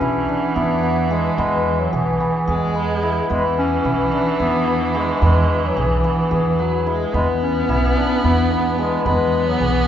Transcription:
Already playing: viola E3, hammered dulcimer B3 D4 F#4 G#4 B4, clarinet C#4
0.01 upright bass B1, hammered dulcimer E4
0.29 hammered dulcimer D4
0.55 upright bass E2, clarinet B3, hammered dulcimer E4
0.83 hammered dulcimer B3
1.10 clarinet G#3, hammered dulcimer G#4
1.37 upright bass E2, clarinet G#3, hammered dulcimer B3
1.80 clarinet F#3
1.93 upright bass B1, clarinet E3, hammered dulcimer G#4
2.20 hammered dulcimer B3
2.48 upright bass E2, viola G#3, hammered dulcimer G#4
2.75 hammered dulcimer B3
3.03 hammered dulcimer E4
3.30 upright bass E2, viola E3, clarinet G#3, hammered dulcimer B3
3.58 clarinet C#4
3.85 upright bass B1, hammered dulcimer E4
4.12 hammered dulcimer D4
4.40 upright bass E2, clarinet B3, hammered dulcimer E4
4.67 hammered dulcimer B3
4.95 clarinet G#3, hammered dulcimer G#4
5.22 upright bass E2, clarinet G#3, hammered dulcimer B3
5.66 clarinet F#3
5.77 upright bass B1, clarinet E3, hammered dulcimer G#4
6.04 hammered dulcimer B3
6.31 upright bass E2, hammered dulcimer G#4
6.59 viola F#3, hammered dulcimer B3
6.86 viola G#3, hammered dulcimer E4
7.14 upright bass E2, clarinet G#3, viola B3, hammered dulcimer B3, frame drum
7.43 clarinet C#4
7.68 upright bass B1, hammered dulcimer E4
7.96 hammered dulcimer D4, frame drum
8.24 upright bass E2, clarinet B3, hammered dulcimer E4
8.51 hammered dulcimer B3, frame drum
8.78 clarinet G#3, hammered dulcimer G#4
9.06 upright bass E2, clarinet G#3, viola B3, hammered dulcimer B3, frame drum
9.47 clarinet F#3
9.60 upright bass B1, clarinet E3, hammered dulcimer G#4

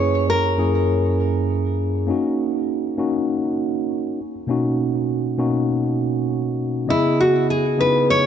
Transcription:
Already playing: tine electric piano F#2 A#3 C#4 E4 G#4, nylon-string guitar C#5
0.30 nylon-string guitar A#4
0.57 tine electric piano F#2 A#3 C#4 E4 G#4
2.07 tine electric piano A#3 C#4 D#4 F#4
2.97 tine electric piano A#3 C#4 D#4 F#4
4.47 tine electric piano B2 A#3 C#4 D#4 F#4
5.38 tine electric piano B2 A#3 C#4 D#4 F#4
6.87 tine electric piano C#3 B3 E4 G#4 D#5, nylon-string guitar E4
7.20 nylon-string guitar F#4
7.50 nylon-string guitar G#4
7.78 tine electric piano C#3 B3 D#4 E4 G#4, nylon-string guitar B4
8.10 nylon-string guitar C#5

